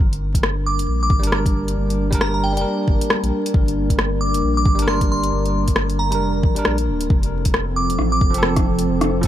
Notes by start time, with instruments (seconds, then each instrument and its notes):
0.00 sub bass G1, ambient pad G3 A#3 D4 A#4
0.13 closed hi-hat
0.35 kick, closed hi-hat
0.43 cross-stick
0.66 synth bell D6
0.79 sub bass F1, closed hi-hat
0.88 sub bass A#1
1.03 synth bell D6
1.10 sub bass G1, kick
1.19 tine electric piano G3 D4
1.24 tine electric piano A#4, closed hi-hat
1.32 cross-stick
1.46 kick, closed hi-hat
1.68 closed hi-hat
1.77 sub bass G1
1.90 closed hi-hat
2.11 tine electric piano G3 D4, kick, closed hi-hat
2.15 tine electric piano A#4
2.21 synth bell A#5, cross-stick
2.34 synth bell A#5
2.44 synth bell G5
2.53 tine electric piano G3
2.57 sub bass F1, tine electric piano D4, synth bell G5, closed hi-hat
2.61 tine electric piano A#4
2.88 sub bass G1, kick
3.01 closed hi-hat
3.10 cross-stick
3.23 sub bass A#1, closed hi-hat
3.46 closed hi-hat
3.54 sub bass G1, kick
3.68 closed hi-hat
3.90 kick, closed hi-hat
3.99 cross-stick
4.21 synth bell D6
4.34 sub bass F1, closed hi-hat
4.43 sub bass A#1
4.57 synth bell D6
4.66 sub bass G1, kick
4.75 tine electric piano G3 D4
4.79 tine electric piano A#4, closed hi-hat
4.88 synth bell C6, cross-stick
5.01 kick, closed hi-hat
5.12 synth bell C6
5.23 closed hi-hat
5.32 sub bass G1
5.46 closed hi-hat
5.68 kick, closed hi-hat
5.76 cross-stick
5.90 closed hi-hat
5.99 synth bell A#5
6.11 sub bass F1, tine electric piano G3 D4, synth bell A#5, closed hi-hat
6.15 tine electric piano A#4
6.43 sub bass A#1, kick
6.55 tine electric piano G3 D4 A#4, closed hi-hat
6.65 sub bass A#1, cross-stick
6.78 closed hi-hat
6.88 sub bass D1
7.01 closed hi-hat
7.10 sub bass F1, ambient pad F3 A3 C4 A4, kick
7.23 closed hi-hat
7.45 kick, closed hi-hat
7.54 cross-stick
7.76 synth bell D6
7.90 sub bass D#1, closed hi-hat
7.99 sub bass A1, cross-stick
8.12 synth bell D6
8.21 sub bass F1, kick
8.30 tine electric piano F3 C4
8.34 tine electric piano A4, closed hi-hat
8.43 cross-stick
8.56 kick, cross-stick, closed hi-hat
8.79 closed hi-hat
8.88 sub bass F1
9.01 cross-stick, closed hi-hat
9.21 tine electric piano F3 C4, kick, closed hi-hat